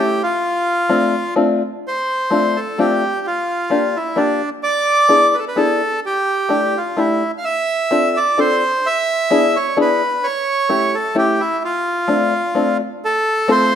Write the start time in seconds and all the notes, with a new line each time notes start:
Already playing: A3 C#4 E4 G4
0.23 F4
0.89 A3 C4 D4 F4
1.36 A3 C4 D4 F4
1.87 C5
2.30 A3 C4 D4 F4
2.56 A4
2.78 A3 C4 D4 F4 G4
3.27 F4
3.70 A#3 D4 F4 G4
3.96 E4
4.16 A#3 D4 F4 G4
4.63 D5
5.09 B3 D4 E4 G#4
5.34 B4
5.39 A4
5.48 B4
5.56 B3 D4 E4 G#4 A4
6.06 G4
6.49 A3 D4 E4 G4
6.77 F4
6.97 A3 D4 E4 G4
7.38 F5
7.45 E5
7.91 C4 D4 F4 A4
8.17 D5
8.38 C4 D4 F4 A4 C5
8.86 E5
9.30 B3 D4 E4 G#4
9.56 C#5
9.77 B3 D4 E4 G#4
9.81 B4
10.24 C#5
10.69 A3 C#4 E4 G4
10.95 A4
11.15 A3 C#4 E4 G4
11.40 E4
11.65 F4
12.08 A3 C4 D4 F4
12.55 A3 C4 D4 F4
13.05 A4
13.48 A3 C4 F4 A4 C5